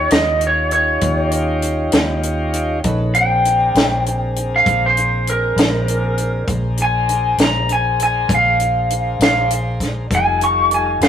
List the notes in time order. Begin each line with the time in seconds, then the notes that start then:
Already playing: C#4 D#4 F4 G4 C#5
0.11 D#2 D#5, snare, closed hi-hat
0.41 closed hi-hat
0.47 C#5
0.71 C#5, closed hi-hat
1.01 D#2, kick, closed hi-hat
1.31 closed hi-hat
1.62 closed hi-hat
1.92 D#2, snare, closed hi-hat
2.23 closed hi-hat
2.54 closed hi-hat
2.84 A#1 C#4 D#4 A4 B4, kick, closed hi-hat
3.15 C4 D4 G#4 A#4 G5, closed hi-hat
3.45 closed hi-hat
3.75 A#1, snare, closed hi-hat
4.06 closed hi-hat
4.36 closed hi-hat
4.56 F5
4.66 A#1, kick, closed hi-hat
4.86 C5
4.97 closed hi-hat
5.27 A#4, closed hi-hat
5.56 A#1, snare, closed hi-hat
5.88 closed hi-hat
6.18 closed hi-hat
6.47 A#1 D4 G#4 A#4 C5, kick, closed hi-hat
6.77 closed hi-hat
6.82 G#5
7.09 closed hi-hat
7.38 A#1, snare, closed hi-hat
7.43 A#5
7.69 G#5, closed hi-hat
8.00 G#5, closed hi-hat
8.29 A#1, kick, closed hi-hat
8.35 F5
8.60 closed hi-hat
8.90 closed hi-hat
9.19 A#1 F5, snare, closed hi-hat
9.50 closed hi-hat
9.80 kick, snare, closed hi-hat
10.10 F1 G3 D#4 F4 A4, kick, closed hi-hat
10.15 G#5
10.41 C#6, closed hi-hat
10.71 G#5, closed hi-hat
11.01 F1 F5, snare, closed hi-hat